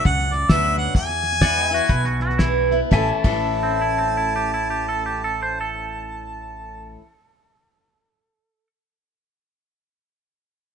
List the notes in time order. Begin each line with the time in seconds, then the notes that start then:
Already playing: D5 F#5
0.05 C#2 F#2 F#5, kick, snare
0.19 snare
0.32 D5, snare
0.49 D2 F#3 B3 D4 F#4 E5, kick, snare, hi-hat pedal
0.77 F#5, snare
0.95 E2 G#5, kick, snare
1.09 snare
1.23 snare
1.33 snare
1.41 E3 G#3 B3 E4 D5 F#5, kick, snare, hi-hat pedal
1.59 D#5 G5
1.71 B3 E4 F#4 E5 G#5, snare
1.89 B1 B2 B4, kick, snare
2.05 F#4, snare
2.20 F#4, snare
2.30 snare
2.38 E3 G#3 B3 E4, kick, snare, hi-hat pedal
2.71 B3 E4, snare
2.91 A1 A2 E3 A3 C#4 E4 E5 G#5 A5, kick, snare
3.15 A5
3.24 A1 A2 E3 A3 C#4 E4 A5, kick, crash
3.63 C4
3.81 E4
3.98 C4
4.17 E4
4.36 G4
4.54 E4
4.70 G4
4.89 A4
5.06 G4
5.24 A4
5.43 C5
5.61 A4